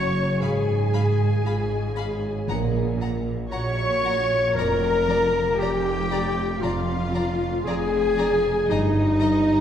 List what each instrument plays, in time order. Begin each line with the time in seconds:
Already playing: double bass section F#1, cello section F#2, harp F#2 C#3 C#4 F#4, viola section C#5, clarinet C#5, violin section C#6
0.41 double bass section G#1, harp G#2, cello section G#2, clarinet G#4, viola section G#4, violin section F5 G#5 B5
0.93 harp G#3, violin section F5 B5
1.43 double bass section G#1, cello section G#2, harp F4, violin section F5 B5
1.95 harp C#4, violin section F5 B5
2.47 double bass section A#1, harp A#2, cello section A#2, timpani A#2, violin section F#5 A#5
2.98 harp A#3, violin section F#5 A#5
3.49 double bass section A#1, cello section A#2, harp F#4, viola section C#5, clarinet C#5, violin section F#5 A#5 C#6
4.01 harp C#4, violin section F#5 A#5
4.54 double bass section F1, harp F2, cello section F2, viola section A#4, clarinet A#4, violin section A#5
4.59 violin section D5
5.07 harp F3, violin section D5 A#5
5.58 double bass section F1, cello section F2, viola section G4, clarinet G4, harp G#4, violin section D5 G5 A#5
6.10 harp D4, violin section D5 A#5
6.60 double bass section F1, cello section F2, harp F2, viola section F4, clarinet F4, violin section D5 F5 A#5
7.12 harp F3, violin section D5 A#5
7.64 double bass section F1, cello section F2, viola section G#4, harp G#4, clarinet G#4, violin section D5 G#5 A#5
8.17 harp D4, violin section D5 A#5
8.69 double bass section G1, cello section G2, harp G2, clarinet D#4, viola section D#4, violin section D#5 A#5
9.21 harp G3, violin section D#5 A#5